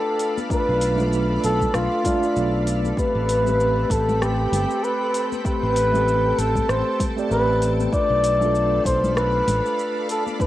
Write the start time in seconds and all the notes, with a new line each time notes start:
Already playing: A3 D4 F4 A4 B4 D5 F5 B5
0.19 open hi-hat, shaker
0.38 high conga, shaker
0.50 A3 D4 F4 B4, kick, shaker
0.69 B1
0.81 open hi-hat, shaker
0.96 A3 D4, low conga, shaker
1.00 F4 B4
1.13 shaker
1.44 B1 A4, open hi-hat, shaker
1.60 kick, low conga, shaker
1.74 B1 F4, cross-stick, shaker
2.04 A3 D4 F4 D5, kick, open hi-hat, low conga, shaker
2.19 A3 D4, shaker
2.24 F4 D5
2.36 B1, shaker
2.67 open hi-hat, shaker
2.85 high conga, shaker
2.97 A3 C4 G4 B4 G5 B5, kick, shaker
3.15 A1
3.29 open hi-hat, shaker
3.44 A3 C4 G4, low conga, shaker
3.49 B4
3.60 shaker
3.90 A1 A4, kick, open hi-hat, shaker
4.09 low conga, shaker
4.22 G4, cross-stick, shaker
4.52 G1, open hi-hat, low conga, shaker
4.71 shaker
4.84 B4, shaker
5.14 open hi-hat, shaker
5.32 high conga, shaker
5.44 A3 C4 G4 B4 A5, kick, shaker
5.63 A1
5.76 open hi-hat, shaker
5.92 A3 C4 G4, low conga, shaker
5.97 A4
6.08 shaker
6.38 A1 A4, open hi-hat, shaker
6.55 kick, low conga, shaker
6.69 A1 C5, cross-stick, shaker
7.00 kick, open hi-hat, low conga, shaker
7.16 A3 C4 G4 D5, shaker
7.30 A1 A3 C4 G4 B4, shaker
7.62 open hi-hat, shaker
7.80 high conga, shaker
7.92 A3 D4 F4 B4 D5 F5 B5, kick, shaker
8.10 B1
8.24 open hi-hat, shaker
8.40 A3 D4 F4, low conga, shaker
8.45 A4
8.55 shaker
8.85 B1 C5, kick, open hi-hat, shaker
9.04 low conga, shaker
9.16 B4, cross-stick, shaker
9.48 A1, open hi-hat, low conga, shaker
9.66 shaker
9.79 shaker
10.09 A4, open hi-hat, shaker
10.27 high conga, shaker
10.39 A3 D4 E4 B4, kick, shaker